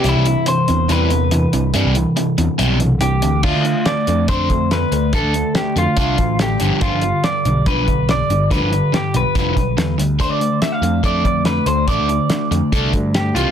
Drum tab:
CC |--------|--------|x-------|--------|
HH |xxxxxxxx|xxxxxxxx|-xxxxxxx|xxxxxxxx|
SD |--------|--------|--o---o-|--o---o-|
BD |--------|--------|o---oo--|o---oo--|

CC |--------|--------|--------|--------|
HH |xxxxxxxx|xxxxxxxx|xxxxxxxx|xxxxxxxx|
SD |--o---o-|--o---o-|--o---o-|--o---o-|
BD |o---oo--|o---oo--|o---oo--|o---oo--|